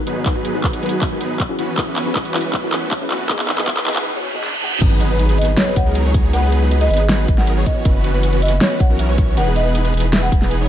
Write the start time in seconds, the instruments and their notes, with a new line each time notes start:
Already playing: analog synth pad G#2 D#3 B3 F#4, synth pluck G#3 D#4 F#4 A#4, riser
0.00 synth pluck B4
0.07 supersaw synth F#3 B3 D#4 G#4 B4, synth arpeggio sound B4, closed hi-hat
0.16 synth arpeggio sound D#5
0.25 supersaw synth F#3 B3 D#4 G#4 B4, synth pluck G#3 D#4 F#4 A#4 B4, synth arpeggio sound F#5, kick, clap, closed hi-hat
0.35 synth arpeggio sound F#4
0.45 synth arpeggio sound F#4, closed hi-hat
0.53 supersaw synth F#3 B3 D#4 G#4 B4, synth pluck G#3 D#4 F#4 A#4 B4
0.64 synth arpeggio sound B4, kick, clap, closed hi-hat
0.73 supersaw synth F#3 B3 D#4 G#4 B4, synth arpeggio sound D#5, closed hi-hat
0.82 supersaw synth F#3 B3 D#4 G#4 B4, synth pluck G#3 D#4 F#4 A#4 B4, synth arpeggio sound F#5, closed hi-hat
0.86 closed hi-hat
0.89 synth arpeggio sound F#4, closed hi-hat
1.02 kick, clap, closed hi-hat
1.10 synth pluck G#3 D#4 F#4 A#4 B4
1.21 supersaw synth F#3 B3 D#4 G#4 B4, synth arpeggio sound B4, closed hi-hat
1.30 synth arpeggio sound D#5
1.40 synth arpeggio sound F#5, kick, clap, closed hi-hat
1.48 synth pluck F#3 C#4 E4 G#4 B4, synth arpeggio sound F#4
1.58 analog synth pad F#2 E3, supersaw synth E3 B3 C#4 F#4 B4, synth arpeggio sound F#4, closed hi-hat
1.77 supersaw synth E3 B3 C#4 F#4 B4, synth pluck F#3 C#4 E4 G#4 B4, synth arpeggio sound C#5, kick, clap, closed hi-hat
1.87 synth arpeggio sound E5
1.96 synth arpeggio sound F#5, clap, closed hi-hat
2.05 supersaw synth E3 B3 C#4 F#4 B4, synth pluck F#3 C#4 E4 G#4 B4, synth arpeggio sound F#4
2.16 kick, clap, closed hi-hat
2.25 supersaw synth E3 B3 C#4 F#4 B4, closed hi-hat
2.34 supersaw synth E3 B3 C#4 F#4 B4, synth pluck F#3 C#4 E4 G#4 B4, synth arpeggio sound C#5, clap, closed hi-hat
2.38 closed hi-hat
2.41 synth arpeggio sound E5, closed hi-hat
2.53 synth arpeggio sound F#5, kick, clap, closed hi-hat
2.62 synth pluck F#3 C#4 E4 G#4 A#4, synth arpeggio sound F#4
2.72 supersaw synth E3 B3 C#4 F#4 B4, synth arpeggio sound F#4, clap, closed hi-hat
2.91 synth arpeggio sound C#5, kick, clap, closed hi-hat
3.00 synth pluck F#3 C#4 E4 G#4 B4, synth arpeggio sound E5
3.10 supersaw synth E3 B3 C#4 F#4 B4, synth arpeggio sound F#5, clap, closed hi-hat
3.20 synth arpeggio sound F#4
3.28 analog synth pad E2 D#4 G#4, synth pluck E3 B3 F#4 G#4 D#5, supersaw synth E3 B3 D#4 G#4 B4, synth arpeggio sound G#4, kick, clap, closed hi-hat
3.39 clap
3.48 synth arpeggio sound D#5, clap, closed hi-hat
3.57 synth pluck E3 B3 F#4 G#4 D#5, supersaw synth E3 B3 D#4 G#4 B4, synth arpeggio sound E5, clap
3.68 synth arpeggio sound G#5, kick, clap, closed hi-hat
3.77 supersaw synth E3 B3 D#4 G#4 B4, synth arpeggio sound G#4, clap, closed hi-hat
3.86 synth pluck E3 B3 F#4 G#4 D#5, supersaw synth E3 B3 D#4 G#4 B4, synth arpeggio sound G#4, clap, closed hi-hat
3.90 closed hi-hat
3.93 clap, closed hi-hat
4.06 reverse cymbal
4.14 synth pluck E3 B3 F#4 G#4 C#5
4.33 synth pluck E3 B3 F#4 G#4 D#5
4.43 snare
4.53 high tom
4.61 synth pluck E3 B3 F#4 G#4 F#5
4.72 mid tom
4.81 sub bass G#1, supersaw synth F#3 B3 D#4 G#4 B4, digital synth lead B4, kick, closed hi-hat, crash, impact
4.91 synth arpeggio sound F#4
5.00 synth arpeggio sound D#5, closed hi-hat
5.10 supersaw synth F#3 B3 D#4 G#4 B4, synth arpeggio sound G#4, digital synth lead B4
5.19 synth arpeggio sound B5, closed hi-hat
5.29 supersaw synth F#3 B3 D#4 G#4 B4, synth arpeggio sound G#4, digital synth lead B4, closed hi-hat
5.38 supersaw synth F#3 B3 D#4 G#4 B4, digital synth lead B4, marimba D#5, closed hi-hat
5.42 closed hi-hat
5.45 synth arpeggio sound F#4, closed hi-hat
5.57 marimba C#5, synth arpeggio sound D#5, snare, closed hi-hat
5.67 synth arpeggio sound G#4
5.76 sub bass C#2, marimba F#5, synth arpeggio sound B5, kick, closed hi-hat
5.86 supersaw synth F#3 B3 D#4 G#4 A#4, synth arpeggio sound G#4, digital synth lead A#4
5.95 closed hi-hat
6.05 supersaw synth F#3 B3 D#4 G#4 C#5, synth arpeggio sound F#4, digital synth lead C#5
6.14 supersaw synth F#3 B3 D#4 G#4 C#5, synth arpeggio sound D#5, kick, closed hi-hat
6.24 synth arpeggio sound G#4
6.33 supersaw synth F#3 B3 D#4 G#4 B4, digital synth lead B4, marimba F#5, synth arpeggio sound B5, closed hi-hat
6.43 synth arpeggio sound G#4
6.52 closed hi-hat
6.62 supersaw synth F#3 B3 D#4 G#4 B4, synth arpeggio sound F#4, digital synth lead B4
6.71 synth arpeggio sound D#5, closed hi-hat
6.81 supersaw synth F#3 B3 D#4 G#4 B4, synth arpeggio sound G#4, digital synth lead B4, marimba D#5, closed hi-hat
6.90 sub bass G#1, supersaw synth F#3 B3 D#4 G#4 B4, digital synth lead B4, marimba D#5, synth arpeggio sound B5, closed hi-hat
6.94 closed hi-hat
6.97 synth arpeggio sound G#4, marimba D#5, closed hi-hat
7.09 snare, closed hi-hat
7.19 synth arpeggio sound F#4
7.28 sub bass G#1, synth arpeggio sound D#5, kick, closed hi-hat
7.38 supersaw synth F#3 B3 D#4 G#4 A#4, synth arpeggio sound G#4, digital synth lead A#4, marimba F#5, snare
7.47 synth arpeggio sound B5, closed hi-hat
7.57 supersaw synth F#3 B3 D#4 G#4 C#5, synth arpeggio sound G#4, digital synth lead C#5
7.66 supersaw synth E3 B3 C#4 F#4 C#5, digital synth lead C#5, marimba D#5, kick, closed hi-hat
7.76 synth arpeggio sound F#4
7.85 sub bass F#1, supersaw synth E3 B3 C#4 F#4 B4, digital synth lead B4, synth arpeggio sound E5, kick, closed hi-hat
7.95 synth arpeggio sound B4
8.04 synth arpeggio sound C#6, closed hi-hat
8.14 supersaw synth E3 B3 C#4 F#4 B4, synth arpeggio sound B4, digital synth lead B4
8.23 closed hi-hat
8.33 supersaw synth E3 B3 C#4 F#4 B4, synth arpeggio sound F#4, digital synth lead B4, closed hi-hat
8.42 supersaw synth E3 B3 C#4 F#4 B4, digital synth lead B4, marimba D#5, synth arpeggio sound E5, closed hi-hat
8.45 closed hi-hat
8.48 synth arpeggio sound B4, closed hi-hat
8.61 marimba C#5, synth arpeggio sound C#6, snare, closed hi-hat
8.71 synth arpeggio sound B4
8.80 sub bass B1, marimba F#5, kick, closed hi-hat
8.90 supersaw synth E3 B3 C#4 F#4 A#4, synth arpeggio sound F#4, digital synth lead A#4
8.99 synth arpeggio sound E5, closed hi-hat
9.09 supersaw synth E3 B3 C#4 F#4 C#5, synth arpeggio sound B4, digital synth lead C#5
9.18 supersaw synth E3 B3 C#4 F#4 C#5, digital synth lead C#5, synth arpeggio sound C#6, kick, closed hi-hat
9.28 synth arpeggio sound B4
9.37 sub bass E1, supersaw synth E3 B3 D#4 G#4 B4, digital synth lead B4, marimba F#5, closed hi-hat
9.47 synth arpeggio sound G#4
9.56 marimba D#5, synth arpeggio sound E5, closed hi-hat
9.66 supersaw synth E3 B3 D#4 G#4 B4, synth arpeggio sound B4, digital synth lead B4
9.75 synth arpeggio sound D#6, closed hi-hat
9.85 supersaw synth E3 B3 D#4 G#4 B4, digital synth lead B4, synth arpeggio sound B4, closed hi-hat
9.94 sub bass E1, supersaw synth E3 B3 D#4 G#4 B4, digital synth lead B4, closed hi-hat
9.97 closed hi-hat
10.00 synth arpeggio sound G#4, closed hi-hat
10.13 synth arpeggio sound E5, snare, closed hi-hat
10.23 synth arpeggio sound B4, marimba F#5
10.32 sub bass E1, synth arpeggio sound D#5, kick, closed hi-hat
10.42 supersaw synth E3 B3 D#4 G#4 B4, synth arpeggio sound G#4, digital synth lead B4, snare
10.51 synth arpeggio sound G#5, closed hi-hat
10.61 supersaw synth E3 B3 D#4 G#4 C#5, digital synth lead C#5